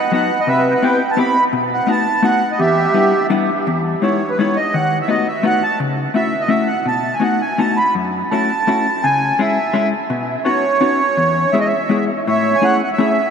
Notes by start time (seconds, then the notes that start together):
Already playing: F#5
0.12 F#3 B3 D#4 F#4 F#5
0.40 D#5
0.47 C3 B4 E5
0.70 G5
0.75 F#5
0.82 B3 C4 E4 G4 G5
1.11 A5
1.17 B3 C4 E4 G4 B5
1.53 B2
1.74 F#5
1.87 A3 B3 D#4 F#4 A5
2.22 A3 B3 D#4 F#4 F#5
2.51 D#5
2.59 E2 G4 E5
2.94 G3 B3 D4 E4
3.30 G3 B3 D4 E4
3.67 E2
4.02 G#3 B3 D#4 E4 C#5
4.30 B4
4.39 G#3 B3 D#4 E4 C#5
4.56 D#5
4.73 D#3 F#5
5.02 E5
5.08 A3 B3 D#4 F#4 D#5
5.27 E5
5.43 A3 B3 D#4 F#4 F#5
5.63 A5
5.80 C#3
6.14 A3 C#4 E4 F#4 E5
6.41 D#5
6.48 A3 C#4 E4 F#4 E5
6.67 F#5
6.86 B2 A5
7.14 G#5
7.20 A3 B3 D#4 F#4 F#5
7.41 G#5
7.58 A3 B3 D#4 F#4 A5
7.77 B5
7.95 F#2
8.31 A3 C#4 E4 F#4 A5
8.67 A3 C#4 E4 F#4
9.03 C#3 G#5
9.39 G#3 C#4 E4 G#4 E5
9.73 G#3 C#4 E4 G#4
10.10 B2
10.44 B3 C#4 D#4 F#4 C#5
10.81 B3 C#4 D#4 F#4
11.17 E2
11.52 G#3 B3 E4 G#4 E5
11.60 D#5
11.66 E5
11.89 G#3 B3 E4 G#4
12.27 A2 C#5 E5
12.56 G#5
12.62 A3 C#4 E4 G#4 F#5
12.83 F#5
12.93 E5
12.98 A3 C#4 E4 G#4